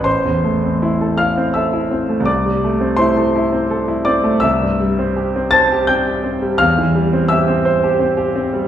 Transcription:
0.00 A1
0.04 C5 C6
0.25 E2
0.44 A3
0.64 C4
0.82 E4
1.01 A4
1.18 E4 F5 F6
1.38 C4
1.54 A4 E5 E6
1.73 E4
1.91 C4
2.09 A3
2.20 C2
2.25 D5 D6
2.45 C3
2.64 A3
2.81 C4
2.97 E4 C5 C6
3.17 A4
3.36 E4
3.53 C4
3.70 A4
3.88 E4
4.05 C4 D5 D6
4.24 A3
4.40 C2 E5 E6
4.62 G2
4.80 G3
4.99 C4
5.16 G4
5.36 C4
5.51 C5 A5 A6
5.72 G4
5.87 C4 G5 G6
6.07 G4
6.24 C4
6.42 G3
6.58 E2 F5 F6
6.78 E3
6.95 G3
7.13 C4
7.29 G4 E5 E6
7.48 C4
7.65 C5
7.84 G4
7.99 C4
8.17 G4
8.35 C4
8.53 G3

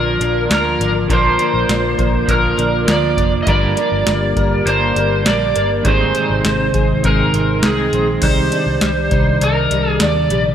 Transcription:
Already playing: A#1 D3 F3 A#3 D4 F4 A#4
0.20 A#1 D4, closed hi-hat
0.49 D2 F3 A#3 D4 F4 A#4, snare, closed hi-hat
0.53 A#4
0.79 G#1 D4, closed hi-hat
1.08 A#1 A#2 D3 F3 A#3 D4 A#4, kick, closed hi-hat
1.13 C5
1.37 A#3 D4 F4 A#4, closed hi-hat
1.41 F3
1.54 A#1
1.69 A#1 D4, snare, closed hi-hat
1.98 A#1 A#4, kick, closed hi-hat
2.26 A#1 F3 A#3 D4 F4, kick, closed hi-hat
2.30 A#4
2.57 A#1 D4, closed hi-hat
2.85 D2 F3 A#3 D4 F4 A#4, snare, closed hi-hat
2.92 D5
3.17 F1 D4, kick, closed hi-hat
3.43 G2 G3 G4 D#5
3.47 G1 D3 G3 A#3 D4 A#4 D5, kick, closed hi-hat
3.76 G3 A#3 D4 A#4, closed hi-hat
3.92 G1
4.07 G1 A#3, snare, closed hi-hat
4.37 G1 A#4, kick, closed hi-hat
4.65 G1 G3 A#3 D4 A#4 C5, closed hi-hat
4.96 G1 A#3, closed hi-hat
5.24 A#1 G3 A#3 D4 A#4 D5, snare, closed hi-hat
5.55 G1 A#3, closed hi-hat
5.83 G#1 G#2 C3 D#3 G#3 C4 D#4 G#4 C5, kick, closed hi-hat
5.88 D#4 G#4
6.15 D#4, closed hi-hat
6.30 G#1
6.44 G#1 C4, snare, closed hi-hat
6.74 G#1 G#4, kick, closed hi-hat
7.03 G#1 G#3 C4 D#4 G#4 A#4, kick, closed hi-hat
7.33 G#1 C4, closed hi-hat
7.62 C2 G#3 C4 D#4, snare, closed hi-hat
7.66 G#4
7.93 A#1 C4, closed hi-hat
8.21 C2 C3 D#3 G3 D#4 C5 D5, kick, closed hi-hat, crash
8.52 D4, closed hi-hat
8.66 C2
8.81 C2 G3, snare, closed hi-hat
9.11 C2 D#4, kick, closed hi-hat
9.41 C2 D4 A#4, closed hi-hat
9.71 C2 G3, closed hi-hat
9.90 G#4
10.00 D#2 D4 D5, snare, closed hi-hat
10.30 A#1 G3, closed hi-hat

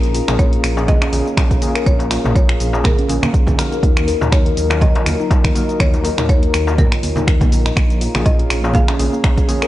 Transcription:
Already playing: A#1 A#3 C#4 F4 G#4 C#5 F5 A#5
0.03 closed hi-hat, cabasa
0.14 F4, open hi-hat, cabasa
0.28 A#1 A#3 C#4 F4 G#4, finger snap, mid tom, darbuka ka, cabasa
0.39 C#5, kick, closed hi-hat, cabasa
0.52 F4, closed hi-hat
0.63 A#1 F3, finger snap, open hi-hat, cabasa
0.77 A#3 C#4 F4 G#4, darbuka ka, darbuka tek, cabasa
0.88 G#4 D#5, kick, closed hi-hat, high conga, low conga, cabasa
1.01 C#4, finger snap, closed hi-hat, darbuka tek
1.12 A#1 A#3 C#4 F4 G#4, open hi-hat, high conga, cabasa
1.26 A#3, cabasa
1.37 F3, finger snap, kick, closed hi-hat, darbuka tek, low conga, cabasa
1.51 A#1, kick, closed hi-hat, cabasa
1.61 F3 A#3 C#4 F4 G#4, open hi-hat, high conga, cabasa
1.75 A#4, finger snap, closed hi-hat, cabasa
1.86 A#1 A#3 C#5, kick, closed hi-hat, high conga, cabasa
1.99 closed hi-hat, darbuka ka, cabasa
2.11 F4, finger snap, open hi-hat, darbuka tek, cabasa
2.24 A#1 A#3 C#4 F4 G#4, mid tom, darbuka ka, cabasa
2.36 C#5, kick, closed hi-hat, cabasa
2.49 F4, finger snap, closed hi-hat
2.60 A#1 F3, open hi-hat, cabasa
2.73 A#3 C#4 F4 G#4, darbuka ka, darbuka tek, cabasa
2.84 G#4 A#4, finger snap, kick, closed hi-hat, mid tom, high conga, cabasa
2.98 C#4, closed hi-hat
3.09 A#1 A#3 C#4 F4 G#4, open hi-hat, high conga, cabasa
3.23 A#3, finger snap, darbuka ka, high conga, low conga, cabasa
3.34 F3, kick, closed hi-hat, cabasa
3.47 A#1, kick, closed hi-hat, high conga, cabasa
3.58 F3 A#3 D#4 F#4 A#4, finger snap, open hi-hat, high conga, cabasa
3.72 A#4, closed hi-hat, cabasa
3.83 D#2 F#3 D#4 A#4 D#5 A#5, kick, closed hi-hat, high conga, cabasa
3.97 finger snap, closed hi-hat, cabasa
4.08 A#4, open hi-hat, cabasa
4.21 D#2 A#3 D#4 F#4 A#4, mid tom, darbuka ka, cabasa
4.32 C#5, finger snap, kick, closed hi-hat, cabasa
4.46 A#4, closed hi-hat
4.57 D#2 A#3, open hi-hat, cabasa
4.70 A#3 D#4 F#4 A#4, finger snap, darbuka ka, darbuka tek, cabasa
4.81 C#5 D#5, kick, closed hi-hat, high conga, low conga, cabasa
4.95 F4, closed hi-hat, darbuka tek
5.06 D#2 A#3 D#4 F#4 A#4, finger snap, open hi-hat, high conga, cabasa
5.20 D#4, cabasa
5.31 A#3, kick, closed hi-hat, darbuka tek, low conga, cabasa
5.44 D#2, finger snap, kick, closed hi-hat, cabasa
5.55 A#3 D#4 F#4 A#4, open hi-hat, high conga, cabasa
5.69 D#5, closed hi-hat, cabasa
5.80 D#2 C#5, finger snap, kick, closed hi-hat, high conga, cabasa
5.94 closed hi-hat, darbuka ka, cabasa
6.04 A#4, open hi-hat, darbuka tek, cabasa
6.18 D#2 A#3 D#4 F#4 A#4, finger snap, closed hi-hat, mid tom, darbuka ka, cabasa
6.29 C#5, kick, closed hi-hat, cabasa
6.43 A#4, closed hi-hat
6.54 D#2 A#3, finger snap, open hi-hat, cabasa
6.67 A#3 D#4 F#4 A#4, darbuka ka, darbuka tek, cabasa
6.78 A#4 C#5, kick, closed hi-hat, mid tom, high conga, cabasa
6.92 F4, finger snap, closed hi-hat, cabasa
7.03 D#2, open hi-hat, high conga, cabasa
7.16 D#4, closed hi-hat, darbuka ka, high conga, low conga, cabasa
7.27 A#3, finger snap, kick, closed hi-hat, cabasa
7.41 A#1, kick, closed hi-hat, high conga, cabasa
7.52 A#3, open hi-hat, high conga, cabasa
7.66 D#5, finger snap, closed hi-hat, cabasa
7.76 A#1 A#3 G#4 C#5 F5 A#5, finger snap, kick, closed hi-hat, high conga, cabasa
7.90 closed hi-hat, cabasa
8.01 F4, open hi-hat, cabasa
8.15 A#1 A#3 C#4 F4 G#4, finger snap, mid tom, darbuka ka, cabasa
8.26 D#5, kick, closed hi-hat, cabasa
8.39 F4, closed hi-hat
8.50 A#1 F3, finger snap, open hi-hat, cabasa
8.64 A#3 C#4 F4 G#4, darbuka ka, darbuka tek, cabasa
8.74 G#4 F5, kick, closed hi-hat, high conga, low conga, cabasa
8.88 C#4, finger snap, closed hi-hat, darbuka tek
8.99 A#1 A#3 C#4 F4 G#4, open hi-hat, high conga, cabasa
9.13 A#3, cabasa
9.24 F3, finger snap, kick, closed hi-hat, darbuka tek, low conga, cabasa
9.38 A#1, kick, closed hi-hat, cabasa
9.48 F3 A#3 C#4 F4 G#4, open hi-hat, high conga, cabasa
9.62 A#4, finger snap, closed hi-hat, cabasa

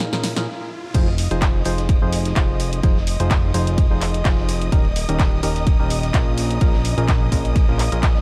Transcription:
Already playing: C#4 G#4 D#5 F5 A#5 D#6, riser
0.00 snare, closed hi-hat
0.13 A#2 C#4 F4 G#4 A#4, snare
0.24 snare, open hi-hat
0.36 A#2 C#4 F4 G#4 A#4, snare, closed hi-hat
0.94 F1 F3 D#4 F4 G#4 C5 D#5 D#6, kick, closed hi-hat, ride, crash
1.08 ride
1.18 open hi-hat, ride
1.31 F1 F3 D#4 F4 G#4 C5, closed hi-hat
1.42 kick, snare, clap, closed hi-hat, ride
1.64 F1 F3 D#4 F4 G#4 C5, open hi-hat, ride
1.78 snare, closed hi-hat
1.89 kick, closed hi-hat, ride
2.02 F1 F3 D#4 F4 G#4 C5
2.06 C6
2.13 open hi-hat, ride
2.25 snare, closed hi-hat
2.36 F1 F3 D#4 F4 G#4 C5, kick, snare, clap, closed hi-hat, ride
2.60 open hi-hat, ride
2.73 closed hi-hat
2.83 F1 F3 D#4 F4 G#4 C5, kick, closed hi-hat, ride
2.97 snare
3.07 open hi-hat, ride
3.20 F1 F3 D#4 F4 G#4 C5, closed hi-hat
3.30 kick, snare, clap, closed hi-hat, ride
3.54 F1 F3 D#4 F4 G#4 C5, open hi-hat, ride
3.67 closed hi-hat, ride
3.78 kick, closed hi-hat, ride
3.91 F1 F3 D#4 F4 G#4 C5
4.01 clap, open hi-hat, ride
4.14 closed hi-hat
4.25 F1 F3 D#4 F4 G#4 C5, kick, snare, clap, closed hi-hat, ride
4.38 snare
4.49 open hi-hat, ride
4.62 closed hi-hat
4.72 D#1 D#3 C#4 D#4 G4 A#4, kick, closed hi-hat, ride
4.80 G4
4.85 ride
4.96 D#5, open hi-hat, ride
5.09 D#1 D#3 C#4 D#4 G4 A#4 A#5, closed hi-hat
5.19 kick, snare, clap, closed hi-hat, ride
5.43 D#1 D#3 C#4 D#4 G4 A#4, open hi-hat, ride
5.56 snare, closed hi-hat
5.66 kick, closed hi-hat, ride
5.79 D#1 D#3 C#4 D#4 G4 A#4
5.90 open hi-hat, ride
6.03 snare, closed hi-hat
6.14 A#1 A#2 C#4 F4 G#4 A#4, kick, snare, clap, closed hi-hat, ride
6.37 open hi-hat, ride
6.48 F5, closed hi-hat
6.61 A#1 A#2 C#4 F4 G#4 A#4, kick, closed hi-hat, ride
6.74 G#4, snare
6.84 open hi-hat, ride
6.98 A#1 A#2 C#4 F4 G#4 A#4, closed hi-hat
7.08 kick, snare, clap, closed hi-hat, ride
7.32 A#1 A#2 C#4 F4 G#4 A#4, kick, open hi-hat, ride
7.45 closed hi-hat, ride
7.56 kick, closed hi-hat, ride
7.68 A#1 A#2 C#4 F4 G#4 A#4
7.79 clap, open hi-hat, ride
7.92 A#1 A#2 C#4 F4 G#4 A#4, closed hi-hat
8.03 kick, snare, clap, closed hi-hat, ride
8.16 snare

